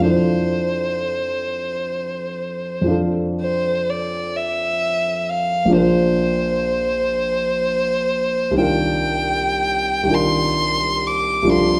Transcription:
Already playing: grand piano F2
0.00 grand piano F3 D4 E4
0.06 grand piano A4, violin C5
2.81 grand piano F2 F3
2.86 grand piano D4 F4
2.90 grand piano A4
3.41 violin C5
3.90 violin D5
4.36 violin E5
5.29 violin F5
5.65 grand piano A#1 F3
5.70 grand piano D4 F4
5.74 grand piano A#4, violin C5
8.51 grand piano C2 D#3
8.56 grand piano D4 F4
8.60 grand piano A#4, violin G5
10.03 grand piano C2 D#3
10.08 grand piano D4 F4
10.12 grand piano A#4, violin C6
11.07 violin D6
11.43 grand piano C2 F3
11.47 grand piano D4 F4
11.52 grand piano A4, violin C6

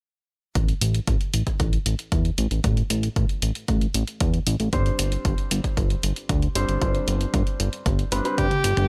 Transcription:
0.55 analog synth bass A1, kick, closed hi-hat
0.69 closed hi-hat
0.81 analog synth bass A1, closed hi-hat
0.95 closed hi-hat
1.07 analog synth bass A1, kick, closed hi-hat
1.21 closed hi-hat
1.34 analog synth bass A1, closed hi-hat
1.47 kick, closed hi-hat
1.60 analog synth bass A1, kick, closed hi-hat
1.73 closed hi-hat
1.86 analog synth bass A1, closed hi-hat
1.99 closed hi-hat
2.12 analog synth bass E2, kick, closed hi-hat
2.25 closed hi-hat
2.38 analog synth bass A1, closed hi-hat
2.51 analog synth bass A1, closed hi-hat
2.64 analog synth bass A1, kick, closed hi-hat
2.77 closed hi-hat
2.90 analog synth bass A1, closed hi-hat
3.03 closed hi-hat
3.16 analog synth bass A1, kick, closed hi-hat
3.29 closed hi-hat
3.42 analog synth bass A1, closed hi-hat
3.55 closed hi-hat
3.68 analog synth bass A1, kick, closed hi-hat
3.81 closed hi-hat
3.94 analog synth bass A1, closed hi-hat
4.08 closed hi-hat
4.20 analog synth bass E2, kick, closed hi-hat
4.34 closed hi-hat
4.47 analog synth bass A1, closed hi-hat
4.60 analog synth bass A1, closed hi-hat
4.73 analog synth bass G1, grand piano G3 C4 D4 C5, kick, closed hi-hat
4.86 closed hi-hat
4.99 analog synth bass G1, closed hi-hat
5.12 closed hi-hat
5.25 analog synth bass G1, kick, closed hi-hat
5.38 closed hi-hat
5.51 analog synth bass G1, closed hi-hat
5.64 kick, closed hi-hat
5.77 analog synth bass G1, kick, closed hi-hat
5.90 closed hi-hat
6.03 analog synth bass G1, closed hi-hat
6.16 closed hi-hat
6.29 analog synth bass D2, kick, closed hi-hat
6.42 closed hi-hat
6.55 analog synth bass G1, grand piano G3 C4 D4 C5, closed hi-hat
6.69 analog synth bass G1, closed hi-hat
6.82 analog synth bass G1, grand piano G3 C4 D4 C5, kick, closed hi-hat
6.95 closed hi-hat
7.08 analog synth bass G1, closed hi-hat
7.21 closed hi-hat
7.34 analog synth bass G1, kick, closed hi-hat
7.47 closed hi-hat
7.60 analog synth bass G1, closed hi-hat
7.73 closed hi-hat
7.86 analog synth bass G1, kick, closed hi-hat
7.99 closed hi-hat
8.12 analog synth bass G1, grand piano G3 C4 D4 B4, closed hi-hat
8.25 grand piano G3 C4 D4 B4, closed hi-hat
8.38 analog synth bass G2, alto saxophone G4, kick, closed hi-hat, high tom
8.51 closed hi-hat, high tom
8.64 analog synth bass G1, closed hi-hat
8.77 analog synth bass G1, closed hi-hat, mid tom

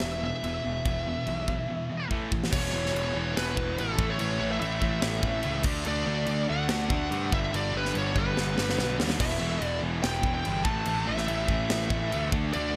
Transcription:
Already playing: distorted electric guitar E2 B2 E3, lead electric guitar E5
0.00 picked electric bass E1, distorted electric guitar E2 B2, snare, crash
0.23 distorted electric guitar E2 B2, lead electric guitar E5
0.44 picked electric bass E1, distorted electric guitar E2 B2 E3, crash
0.65 picked electric bass E1, distorted electric guitar E2 B2
0.85 picked electric bass E1, distorted electric guitar E2 B2 E3, kick, crash
1.07 distorted electric guitar E2 B2
1.27 picked electric bass B1, distorted electric guitar E2 B2, crash
1.47 distorted electric guitar E2 B2 E3, kick
1.70 distorted electric guitar E2 B2
1.92 distorted electric guitar E2 B2
2.10 distorted electric guitar A2 E3 A3, kick
2.32 distorted electric guitar A2 E3, kick
2.44 snare
2.51 picked electric bass E1, distorted electric guitar E2 B2 E3, lead electric guitar C#5, kick, crash
2.72 picked electric bass E1, distorted electric guitar E2 B2 E3
2.86 snare
2.93 picked electric bass E1, distorted electric guitar E2 B2 E3, crash
3.15 picked electric bass E1, distorted electric guitar E2 B2 E3
3.36 picked electric bass E1, distorted electric guitar E2 B2 E3, lead electric guitar B4, snare, crash
3.57 picked electric bass E1, distorted electric guitar E2 B2 E3, kick
3.78 picked electric bass A1, distorted electric guitar E2 B2 E3, lead electric guitar A4, crash
3.98 picked electric bass A1, distorted electric guitar A2 E3 A3, kick
4.10 lead electric guitar C#5
4.18 picked electric bass A1, distorted electric guitar A2 E3 A3, lead electric guitar C#5, crash
4.39 picked electric bass A1, distorted electric guitar A2 E3 A3
4.52 lead electric guitar E5
4.59 picked electric bass A1, distorted electric guitar A2 E3 A3, lead electric guitar E5, crash
4.79 picked electric bass A1, distorted electric guitar A2 E3 A3, kick
5.01 picked electric bass A1, distorted electric guitar A2 E3 A3, snare, crash
5.22 picked electric bass A1, distorted electric guitar A2 E3 A3, kick
5.43 picked electric bass C#2, distorted electric guitar A2 E3 A3, crash
5.63 picked electric bass D2, distorted electric guitar D3 A3 D4, kick, crash
5.84 picked electric bass D2, distorted electric guitar D3 A3 D4, lead electric guitar D5, crash
6.06 picked electric bass D2, distorted electric guitar D3 A3 D4
6.27 picked electric bass D2, distorted electric guitar D3 A3 D4, crash
6.48 picked electric bass D2, distorted electric guitar D3 A3 D4, lead electric guitar F#5
6.69 picked electric bass D2, distorted electric guitar D3 A3 D4, snare, crash
6.89 picked electric bass D2, distorted electric guitar D3 A3 D4, kick
7.09 picked electric bass G2, distorted electric guitar D3 A3 D4, crash
7.30 picked electric bass G1, distorted electric guitar G2 D3 G3, lead electric guitar E5, kick
7.52 picked electric bass G1, distorted electric guitar G2 D3 G3, crash
7.56 lead electric guitar D5
7.72 picked electric bass G1, distorted electric guitar G2 D3 G3
7.77 lead electric guitar B4
7.85 snare
7.92 picked electric bass G1, distorted electric guitar G2 D3 G3, crash
7.98 lead electric guitar C#5
8.07 lead electric guitar C#5
8.13 picked electric bass G1, distorted electric guitar G2 D3 G3, kick
8.19 lead electric guitar B4
8.34 picked electric bass G1, distorted electric guitar G2 D3 G3, snare
8.55 picked electric bass G1, distorted electric guitar G2 D3 G3, snare
8.69 snare
8.75 picked electric bass B1, distorted electric guitar G2 D3 G3, snare
8.81 distorted electric guitar G3
8.97 picked electric bass D#2, distorted electric guitar G2 D3 G3, snare
9.10 snare
9.16 distorted electric guitar E2 B2 E3
9.20 picked electric bass E1, distorted electric guitar E2 B2 E3, lead electric guitar E5, kick, crash
9.39 picked electric bass E1, distorted electric guitar E2 B2 E3
9.61 picked electric bass E1, distorted electric guitar E2 B2 E3, lead electric guitar D5, crash
9.82 picked electric bass E1, distorted electric guitar E2 B2 E3
10.02 picked electric bass E1, distorted electric guitar E2 B2 E3, lead electric guitar G5, snare, crash
10.23 picked electric bass E1, distorted electric guitar E2 B2 E3, kick
10.35 lead electric guitar G5
10.44 picked electric bass G1, distorted electric guitar E2 B2 E3, crash
10.65 picked electric bass A1, distorted electric guitar A2 E3 A3, lead electric guitar A5, kick
10.85 picked electric bass A1, distorted electric guitar A2 E3 A3, crash
11.06 picked electric bass A1, distorted electric guitar A2 E3 A3, lead electric guitar E5
11.17 snare
11.27 picked electric bass A1, distorted electric guitar A2 E3 A3, crash
11.48 picked electric bass A1, distorted electric guitar A2 E3 A3, kick
11.68 picked electric bass A1, distorted electric guitar A2 E3 A3, snare, crash
11.90 picked electric bass A1, distorted electric guitar A2 E3 A3, kick
12.09 picked electric bass D2, distorted electric guitar A2 E3 A3, crash
12.30 picked electric bass D2, distorted electric guitar D3 A3 D4, kick
12.52 picked electric bass D2, distorted electric guitar D3 A3 D4, lead electric guitar D5, crash
12.71 distorted electric guitar D3 A3 D4

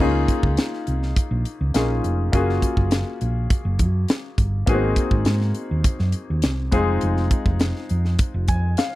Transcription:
Already playing: grand piano D#5
0.00 fingered electric bass C#2, grand piano A#3 C#4 D#4 F4 G#4, kick, crash
0.28 kick, closed hi-hat
0.43 fingered electric bass C#2, kick
0.57 snare, closed hi-hat
0.73 snare
0.87 fingered electric bass C2, closed hi-hat
1.03 snare
1.16 kick, closed hi-hat
1.31 fingered electric bass A#1
1.45 closed hi-hat
1.61 fingered electric bass C#2
1.74 fingered electric bass A#1, grand piano A#3 C#4 D#4 F4 G#4, snare, closed hi-hat
2.04 fingered electric bass F1, closed hi-hat
2.32 fingered electric bass F#1, grand piano A#3 C#4 F4 F#4 G#4, kick, closed hi-hat
2.50 snare
2.62 kick, closed hi-hat
2.77 fingered electric bass F#1, kick
2.91 snare, closed hi-hat
3.21 fingered electric bass A#1, closed hi-hat
3.50 kick, closed hi-hat
3.65 fingered electric bass F#1
3.79 fingered electric bass F#2, kick, closed hi-hat
4.08 snare, closed hi-hat
4.38 fingered electric bass G1, kick, closed hi-hat
4.66 fingered electric bass G#1, grand piano A#3 B3 D#4 F#4 G#4, kick, closed hi-hat
4.74 grand piano C4
4.96 kick, closed hi-hat
5.11 fingered electric bass G#1, kick
5.25 fingered electric bass G#2, snare, closed hi-hat
5.41 snare
5.54 closed hi-hat
5.71 fingered electric bass D#2
5.84 kick, closed hi-hat
5.99 fingered electric bass F#2, snare
6.12 closed hi-hat
6.30 fingered electric bass D#2
6.42 fingered electric bass C2, snare, closed hi-hat
6.71 fingered electric bass F1, grand piano G#3 C4 D#4 F4 G#4, kick, closed hi-hat
7.01 fingered electric bass F1, closed hi-hat
7.17 snare
7.31 kick, closed hi-hat
7.46 fingered electric bass F1, kick
7.60 snare, closed hi-hat
7.76 snare
7.89 fingered electric bass F2, closed hi-hat
8.05 snare
8.19 kick, closed hi-hat
8.34 fingered electric bass F1
8.48 fingered electric bass F2, grand piano G#5, kick, closed hi-hat
8.77 grand piano F5, snare, closed hi-hat

